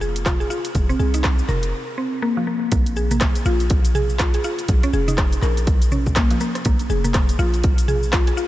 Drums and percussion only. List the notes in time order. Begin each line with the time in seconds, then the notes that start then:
0.02 shaker
0.16 closed hi-hat, shaker
0.26 kick, cross-stick, clap, closed hi-hat, mid tom, shaker
0.41 shaker
0.50 shaker
0.65 closed hi-hat, shaker
0.75 kick, closed hi-hat, mid tom, shaker
0.90 shaker
1.00 shaker
1.14 closed hi-hat, shaker
1.24 kick, cross-stick, clap, closed hi-hat, shaker
1.39 shaker
1.49 clap, mid tom, shaker
1.63 closed hi-hat, shaker
2.72 kick, closed hi-hat, shaker
2.86 closed hi-hat, shaker
2.96 shaker
3.11 closed hi-hat, mid tom, shaker
3.21 kick, cross-stick, clap, closed hi-hat, shaker
3.35 closed hi-hat, shaker
3.45 shaker
3.60 closed hi-hat, shaker
3.70 kick, closed hi-hat, shaker
3.85 closed hi-hat, shaker
3.95 mid tom, shaker
4.10 shaker
4.19 kick, cross-stick, clap, closed hi-hat, shaker
4.34 closed hi-hat, shaker
4.44 shaker
4.59 closed hi-hat, shaker
4.68 kick, closed hi-hat, shaker
4.83 closed hi-hat, shaker
4.93 shaker
5.08 closed hi-hat, mid tom, shaker
5.18 kick, cross-stick, clap, closed hi-hat, shaker
5.33 closed hi-hat, shaker
5.42 clap, shaker
5.57 closed hi-hat, shaker
5.67 kick, closed hi-hat, shaker
5.82 closed hi-hat, shaker
5.91 mid tom, shaker
6.06 kick, mid tom, shaker
6.16 kick, cross-stick, clap, closed hi-hat, shaker
6.31 closed hi-hat, shaker
6.40 shaker
6.55 cross-stick, closed hi-hat, shaker
6.65 kick, closed hi-hat, shaker
6.79 closed hi-hat, shaker
6.90 shaker
7.04 closed hi-hat, mid tom, shaker
7.14 kick, cross-stick, clap, closed hi-hat, shaker
7.29 closed hi-hat, shaker
7.39 shaker
7.54 closed hi-hat, shaker
7.64 kick, closed hi-hat, shaker
7.78 closed hi-hat, shaker
7.88 mid tom, shaker
8.03 shaker
8.13 kick, cross-stick, clap, closed hi-hat, shaker
8.27 closed hi-hat, shaker
8.37 shaker